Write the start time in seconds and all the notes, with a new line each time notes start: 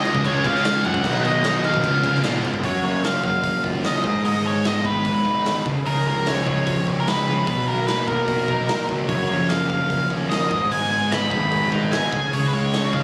Already playing: C#3 G#3 C#4 F4 C#5 D#5 F5
0.04 G#3 C#4 F4, crash
0.14 C#2, kick
0.24 C#2 C#3 G#3 C#4 F4 C#5, kick, crash
0.44 C#3 G#3 C#4 F4 F5, kick, crash
0.56 snare
0.63 C#3 G#3 C#4 F4, snare, crash
0.83 F#2 G#3 C#4 F4 F#5, crash
0.94 kick
1.02 B1 B2 D#3 F#3 B3 D#4 F#4 A#4 D#5, kick, crash
1.23 F#3 B3 D#4 D#5, crash
1.43 B2 D#3 F#3 B3 D#4, snare, crash
1.63 F#3 B3 D#4 F5, crash
1.74 B1, kick
1.83 C#2 C#3 G#3 B3 C#4 F4 G#4 C#5, kick, crash
2.03 C#3 G#3 B3 F4, kick, crash
2.15 snare
2.23 A#2 C#3 G#3 B3 F4, snare, crash
2.35 snare
2.43 G#2 G#3 B3 F4, crash
2.54 kick
2.63 F#2 C#3 F#3 C#4 C#5, kick, open hi-hat
2.83 F#2 A#3 C#5
3.04 C#4 F5, snare, open hi-hat
3.24 F#2 F#3 F5, kick
3.44 F#2 A#3, kick, open hi-hat
3.63 F#2 F4, kick
3.84 C#4 D#5, snare, open hi-hat
4.03 G#2, kick
4.25 G#2 D#5, open hi-hat
4.45 G#3 C#5
4.65 B3 D#5, snare, open hi-hat
4.85 G#2 D#3 B4, kick
5.05 G#2 G#3, kick, open hi-hat
5.25 D#2 D#4, kick
5.45 B3, snare, open hi-hat
5.66 C#2 C#3, kick
5.85 C#2 C#3 A#4, open hi-hat
6.05 C#2 F3 A#4
6.26 G#3 C#5, snare, open hi-hat
6.47 C#2 C#3 C#5, kick
6.66 C#2 F3, kick, open hi-hat
6.87 C#2 C#4, kick
7.00 A#4
7.07 G#3 B4, snare, open hi-hat
7.27 C#2 F3
7.47 B1 B2 B4, kick, open hi-hat
7.68 F#3 A#4
7.87 A#3 B4, snare, open hi-hat
8.08 B1 B2 A#4, kick
8.28 B2 F#3, kick, open hi-hat
8.48 B2 D#4, kick
8.68 A#3, snare, open hi-hat
8.89 C#2 F#3, kick
9.07 F#1 F#2 C#3 A#3 C#4 F4 C#5, kick, open hi-hat
9.12 A#4
9.28 F#1 F3 C#5
9.49 A#3 F5, snare, open hi-hat
9.70 F#1 C#3 F5, kick
9.90 F#1 F3, kick, open hi-hat
10.10 D#2 C#4, kick
10.30 A#3 D#5, snare, open hi-hat
10.51 G#1 G#2 B3 D#4 G#4 D#5, kick
10.71 G#2 G#5, open hi-hat
10.91 G#3 G#5
11.11 B3 B5, snare, open hi-hat
11.31 G#1 D#3 B5, kick
11.52 G#2 G#3, kick, open hi-hat
11.72 G#2 D#4, kick
11.92 B3 G#5, snare, open hi-hat
12.11 C#2 C#3 G#3 C#4 F4 F5, kick
12.15 G#4
12.33 C#2 C#3 C#5, open hi-hat
12.47 B4
12.52 C#2 G#3 C#5
12.73 C#4, snare, open hi-hat
12.93 C#2 C#3 F5, kick